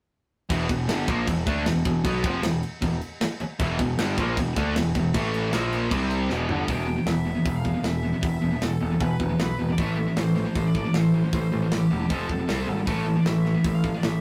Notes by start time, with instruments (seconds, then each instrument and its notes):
0.49 picked electric bass E1, distorted electric guitar E2 B2 E3, kick, crash
0.69 picked electric bass E1, distorted electric guitar E2 B2, kick, crash
0.88 picked electric bass G1, distorted electric guitar G2 D3 G3, snare, crash
1.07 picked electric bass A#1, distorted electric guitar A#2 F3 A#3, kick, crash
1.26 picked electric bass E1, distorted electric guitar E2 B2, kick, crash
1.46 picked electric bass D2, distorted electric guitar D3 A3 D4, kick, crash
1.66 picked electric bass E1, distorted electric guitar E2 B2, snare, crash
1.85 picked electric bass E1, distorted electric guitar E2 B2, kick, crash
2.04 picked electric bass B1, distorted electric guitar B2 F#3 B3, kick, crash
2.23 picked electric bass F1, distorted electric guitar F2 C3 F3, kick, crash
2.43 picked electric bass E1, distorted electric guitar E2 B2, snare, crash
2.63 crash
2.81 picked electric bass E1, distorted electric guitar E2 B2, kick, crash
3.01 crash
3.21 muted distorted electric guitar stroke, muted picked electric bass stroke, snare, crash
3.40 muted distorted electric guitar stroke, muted picked electric bass stroke, crash
3.59 picked electric bass E1, distorted electric guitar E2 B2 E3, kick, crash
3.79 picked electric bass E1, distorted electric guitar E2 B2, kick, crash
3.97 picked electric bass G1, distorted electric guitar G2 D3 G3, snare, crash
4.18 picked electric bass A#1, distorted electric guitar A#2 F3 A#3, kick, crash
4.37 picked electric bass E1, distorted electric guitar E2 B2, kick, crash
4.56 picked electric bass D2, distorted electric guitar D3 A3 D4, kick, snare, crash
4.76 picked electric bass E1, distorted electric guitar E2 B2, snare, crash
4.95 picked electric bass E1, distorted electric guitar E2 B2, kick, crash
5.13 picked electric bass A1, distorted electric guitar A2 E3 A3, kick, crash
5.34 crash
5.52 picked electric bass A#1, distorted electric guitar A#2 F3 A#3, snare, crash
5.73 crash
5.91 picked electric bass C2, distorted electric guitar C3 G3 C4, kick, crash
6.11 crash
6.29 picked electric bass E1, distorted electric guitar E2 B2 E3, snare
6.48 picked electric bass G1, distorted electric guitar G2 D3 G3, floor tom
6.67 picked electric bass E1, distorted electric guitar E2 B2 E3, lead electric guitar G5, kick, open hi-hat
6.87 distorted electric guitar E2 B2
6.96 distorted electric guitar E2 B2
7.06 picked electric bass E1, distorted electric guitar E2 B2, lead electric guitar E5, snare, open hi-hat
7.25 distorted electric guitar E2 B2
7.35 distorted electric guitar E2 B2
7.45 picked electric bass E1, distorted electric guitar E2 B2, lead electric guitar E5, kick, open hi-hat
7.56 lead electric guitar F5
7.64 distorted electric guitar E2 B2, kick
7.73 distorted electric guitar E2 B2
7.83 picked electric bass E1, distorted electric guitar E2 B2, lead electric guitar E5, snare, open hi-hat
8.03 distorted electric guitar E2 B2
8.12 distorted electric guitar E2 B2
8.21 picked electric bass E1, distorted electric guitar E2 B2, lead electric guitar E5, kick, open hi-hat
8.41 picked electric bass E1, distorted electric guitar E2 B2
8.51 distorted electric guitar E2 B2
8.61 picked electric bass E1, distorted electric guitar E2 B2, lead electric guitar A4, snare, open hi-hat
8.81 picked electric bass E1, distorted electric guitar E2 B2
8.90 distorted electric guitar E2 B2
9.00 picked electric bass E1, distorted electric guitar E2 B2, lead electric guitar B4, kick, open hi-hat
9.19 picked electric bass E1, distorted electric guitar E2 B2, kick
9.29 distorted electric guitar E2 B2
9.39 picked electric bass B1, distorted electric guitar E2 B2, lead electric guitar B4, snare, open hi-hat
9.59 picked electric bass E1, distorted electric guitar E2 B2
9.69 distorted electric guitar E2 B2, lead electric guitar D5
9.78 picked electric bass A1, distorted electric guitar A2 E3 A3, lead electric guitar E5, kick, open hi-hat
9.97 distorted electric guitar A2 E3
10.07 distorted electric guitar A2 E3
10.16 picked electric bass A1, distorted electric guitar A2 E3, lead electric guitar C5, snare, open hi-hat
10.35 distorted electric guitar A2 E3, snare
10.45 distorted electric guitar A2 E3
10.55 picked electric bass A1, distorted electric guitar A2 E3, lead electric guitar C5, kick, open hi-hat
10.67 lead electric guitar D5
10.74 distorted electric guitar A2 E3, kick
10.84 distorted electric guitar A2 E3
10.94 picked electric bass A1, distorted electric guitar A2 E3, lead electric guitar C5, snare, open hi-hat
11.14 distorted electric guitar A2 E3
11.24 distorted electric guitar A2 E3
11.33 picked electric bass A1, distorted electric guitar A2 E3, lead electric guitar C5, kick, open hi-hat
11.52 picked electric bass A1, distorted electric guitar A2 E3
11.62 distorted electric guitar A2 E3
11.72 picked electric bass A1, distorted electric guitar A2 E3, lead electric guitar G4, snare, open hi-hat
11.90 picked electric bass E1, distorted electric guitar A2 E3
11.99 distorted electric guitar A2 E3
12.09 picked electric bass F1, distorted electric guitar F2 C3 F3, lead electric guitar A4, kick, open hi-hat
12.29 picked electric bass F1, distorted electric guitar F2 C3, kick
12.38 distorted electric guitar F2 C3
12.47 picked electric bass C2, distorted electric guitar C3 G3 C4, lead electric guitar A4, snare, open hi-hat
12.67 picked electric bass G#1, distorted electric guitar C3 G3
12.76 distorted electric guitar C3 G3
12.86 picked electric bass A1, distorted electric guitar A2 E3 A3, lead electric guitar A5, kick, open hi-hat
13.06 distorted electric guitar A2 E3
13.15 distorted electric guitar A2 E3, lead electric guitar D5
13.25 picked electric bass A1, distorted electric guitar A2 E3, lead electric guitar E5, snare, open hi-hat
13.45 distorted electric guitar A2 E3, snare
13.54 distorted electric guitar A2 E3
13.64 picked electric bass A1, distorted electric guitar A2 E3, lead electric guitar E5, kick, open hi-hat
13.75 lead electric guitar F5
13.84 distorted electric guitar A2 E3, kick
13.94 distorted electric guitar A2 E3, lead electric guitar D5
14.03 picked electric bass A1, distorted electric guitar A2 E3, lead electric guitar E5, snare, open hi-hat